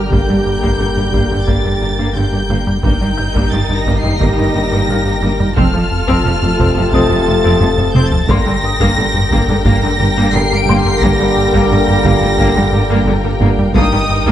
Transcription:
Already playing: G1 D3 G3 A#3 G4 A#4 G5 A#5 F6 A#6
0.11 G1 G2 A#3 G6, taiko
0.28 G2 D3 G3
0.46 G2
0.62 G2 A#3, taiko
0.79 G1 G2 D3
0.96 G2 G3, taiko low-mid
1.13 G1 G2 A#3, taiko
1.30 G2 D3, taiko low-mid
1.47 G1 G2 A#3 A6, taiko
1.64 G2 D3, taiko low-mid
1.81 G1 G2 G3
1.98 G2 A#3
2.15 G1 G2 D3 G6
2.32 G2 G3
2.49 G1 G2 A#3
2.67 G3, taiko low-mid
2.83 G1 G2 D#3 G3 A#3 D#4 G4 A#4 G5 G6, taiko
3.01 G2 D#3 G3
3.18 G2 G6
3.34 G2 A#3, taiko
3.52 G1 G2 D#3 A6
3.69 G2 G3, taiko low-mid
3.76 A#6
3.86 G1 G2 A#3, taiko
3.99 C7
4.03 G2 D#3, taiko low-mid
4.20 G1 G2 A#3 A#6, taiko
4.38 G2 D#3, taiko low-mid
4.55 G1 G2 G3
4.72 G2 A#3
4.89 G1 G2 D#3 F5 F6
5.05 G2 G3
5.22 G1 G2 A#3
5.40 G3, taiko low-mid
5.56 F1 F2 C3 F3 A3 C4 F4 A4 A5 F6, taiko
5.73 F2 F3
5.92 F2
6.07 F2 C4, taiko
6.25 F1 F2 F3
6.42 F2 A3, taiko low-mid
6.58 F1 F2 C4, taiko
6.75 F2 F3, taiko low-mid
6.92 F1 F2 C4 D#5 D#6 A6, taiko
7.09 F2 F3, taiko low-mid
7.27 F1 F2 A3
7.44 F2 C4
7.60 F1 F2 F3, taiko low-mid
7.78 F2 A3, taiko low-mid
7.94 F1 F2 C4 G6, taiko mid
8.07 A6
8.12 F3, taiko low
8.28 G1 G2 D3 G3 A#3 G4 A#4 G5 C6 A#6, taiko
8.47 G2 D3 G3
8.63 G2 D#6
8.80 G2 A#3, taiko
8.97 G1 G2 D3
9.13 G2 G3, taiko low-mid
9.31 G1 G2 A#3, taiko
9.48 G2 D3, taiko low-mid
9.65 G1 G2 A#3 A#6, taiko
9.82 G2 D3, taiko low-mid
9.99 G1 G2 G3
10.16 G2 A#3
10.32 G1 G2 D3 C7
10.50 G2 G3
10.57 D7
10.67 G1 G2 A#3 C6
10.79 C7
10.84 G3, taiko low-mid
11.00 G1 G2 A#3 A#6, taiko
11.19 G2 D3 G3
11.37 G2
11.53 G2 A#3, taiko
11.69 G1 G2 D3 A#6
11.88 G2 G3, taiko low-mid
12.04 G1 G2 A#3 F4 F5, taiko
12.21 G2 D3, taiko low-mid
12.38 G1 G2 A#3, taiko
12.55 G2 D3, taiko low-mid
12.73 G1 G2 G3
12.90 G2 A#3
13.07 G1 G2 D3
13.24 G2 G3
13.41 G1 G2 A#3
13.58 G3, taiko low-mid
13.74 G1 G2 D#3 G3 A#3 D#4 G4 A#4 G5 D#6, taiko
13.92 G2 D#3 G3
14.10 G2
14.26 G2 A#3, taiko

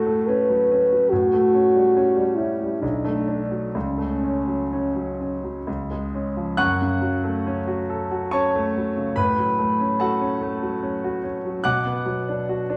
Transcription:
Already playing: A2 A3 C#4 F#4 A4
0.07 A3
0.27 C#4 B4
0.49 F#3
0.72 C#4
0.92 F#3
1.10 A2 F#4
1.33 A3
1.54 C#4
1.76 G3
1.97 C#4
2.17 G3
2.37 C#4 E4
2.61 G3
2.81 B1 D4
3.05 A3
3.28 D4
3.51 F#3
3.74 C#2 C#4
3.98 A3
4.23 C#4
4.47 F#3
4.73 C#4
4.96 F#3
5.21 C#4
5.44 F#3
5.67 C#2
5.91 G#3
6.15 C#4
6.37 F3
6.57 F#2 F#5 C#6 F#6
6.82 C#3
7.02 F#3
7.24 A3
7.47 C#4
7.67 F#4
7.90 A4
8.12 F#4
8.31 C#4 C#5 A5 C#6
8.56 A3
8.77 F#3
8.97 C#3
9.16 A2 B4 B5
9.38 F#3
9.59 A3
9.80 C#4
10.00 F#4 A4 F#5 A5
10.21 C#4
10.41 A3
10.63 F#3
10.83 C#4
11.04 F#4
11.24 C#4
11.45 F#3
11.64 B2 F#5 D6 F#6
11.85 B3
12.06 F#3
12.29 D4
12.49 F#4
12.70 D4

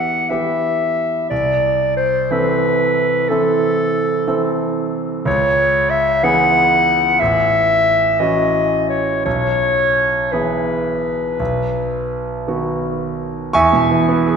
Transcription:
Already playing: E3 B3 G4 F#5
0.29 E3 B3 G4 E5
1.30 C2 D5
1.97 C5
2.31 E3 C4 A4 B4
3.29 E3 C4 A4
4.27 E3 C4 A4
5.25 C#2 C#5
5.90 E5
6.23 E3 B3 G#4 F#5
7.20 A1 E5
8.20 E3 C#4 F#4 D#5
8.89 C#5
9.25 B1 C#5
10.32 E3 B3 G#4 B4
11.40 B1
12.48 D#3 B3 F#4
13.53 E2 E5 G#5 C#6
13.73 B2
13.91 E3
14.09 B3
14.27 G#4

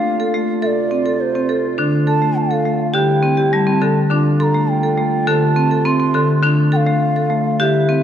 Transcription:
Already playing: D3 A3 A#3 F4 F5
0.20 A4
0.34 A3
0.62 D2 C3 A3 A4 E5
0.67 D5
0.91 C4
1.06 A4
1.21 C5
1.35 C4
1.49 A4
1.78 D3 A3 D4
2.07 A4 A5
2.22 A3
2.38 F5
2.51 A4
2.65 A3
2.94 C3 D3 G3 E4 G4 G5
3.23 C4
3.37 G4
3.53 G3 A5
3.67 C4
3.81 D3 A4
4.10 D3 A#3 D4 F4
4.39 A4 A#5 C6
4.54 A3
4.70 G5
4.83 A4
4.97 A3
5.27 C3 D3 A3 A4 A5
5.56 C4
5.71 A4
5.85 C4 C6
6.00 C4
6.14 D3 A4
6.42 D3 D4 F4
6.72 A4 G5
6.76 F5
6.86 A3
7.16 A4
7.30 A3
7.59 C3 D3 G3 E4 G4 F5
7.63 E5
7.89 C4

